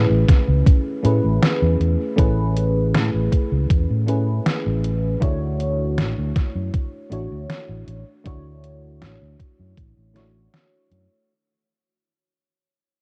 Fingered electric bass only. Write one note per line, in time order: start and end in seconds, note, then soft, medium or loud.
0.10 0.24 A1 loud
0.48 0.62 C#2 medium
1.05 1.19 A2 medium
1.24 1.38 A1 medium
1.62 1.76 E2 medium
1.80 1.95 E2 loud
2.18 2.95 A1 medium
2.95 3.09 A2 loud
3.14 3.28 A1 medium
3.52 3.65 C#2 medium
3.70 3.85 E2 medium
3.90 4.39 A2 medium
4.66 5.15 A1 loud
5.22 6.00 D2 medium
5.98 6.13 A1 loud
6.18 6.31 D2 medium
6.55 6.69 F#2 medium
7.12 7.27 A1 medium
7.32 7.45 D2 medium
7.69 7.83 A1 medium
7.87 8.02 A1 medium
8.26 9.03 D2 medium
9.02 9.17 A1 medium
9.22 9.35 D2 medium
9.59 9.73 F#2 medium
9.77 9.92 A1 medium
9.97 10.46 A1 medium
10.91 11.06 F#2 medium